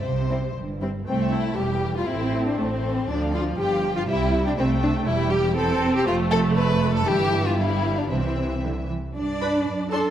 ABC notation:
X:1
M:2/4
L:1/16
Q:1/4=119
K:C
V:1 name="Violin section"
c4 z4 | g e g e G B G B | A c A c A c A c | d f d f g f g f |
e g e g e g e g | g4 c4- | c4 d4 | e4 f4 |
e6 z2 | [K:G] z2 b z3 c' z |]
V:2 name="Violin section"
z2 [Ec]2 z2 [Ec]2 | C2 E2 G3 F | E3 D C4 | D2 F2 G3 F |
E3 D C2 D2 | E2 G2 A3 G | F2 A2 B3 A | G3 F E3 D |
C4 z4 | [K:G] d6 a2 |]
V:3 name="Viola section"
z2 [G,C]2 z2 [G,C]2 | A,4 G,4 | C4 A,2 E,2 | F,8 |
G,4 A,4 | G,4 C4 | A,8 | E,4 G,4 |
E,6 z2 | [K:G] z2 [DB] z3 [DA] z |]
V:4 name="Cello section" clef=bass
C,4 G,,4 | C,,4 E,,4 | A,,4 A,,4 | D,,4 G,,4 |
C,4 C,4 | E,,8 | F,,8 | G,,8 |
C,4 D,2 E,2 | [K:G] D6 A2 |]
V:5 name="Double bass section" clef=bass
C,,4 G,,,4 | C,,4 E,,,4 | A,,,4 A,,,4 | D,,4 G,,,4 |
C,,4 C,,4 | E,,,8 | F,,,8 | G,,,8 |
C,,6 z2 | [K:G] G,,4 F,,4 |]